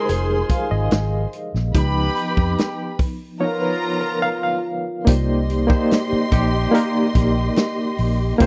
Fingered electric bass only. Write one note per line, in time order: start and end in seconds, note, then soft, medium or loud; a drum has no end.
0.09 0.41 F1 medium
0.71 0.87 G#1 loud
0.92 1.24 G#1 loud
1.54 1.71 A#1 medium
1.75 2.08 C#2 loud
2.38 2.54 F2 medium
5.07 5.73 C2 loud
6.13 muted fingered electric bass stroke soft
6.32 6.65 A#1 loud
7.15 7.48 A#1 medium
7.99 8.32 A#1 medium
8.41 8.46 C2 loud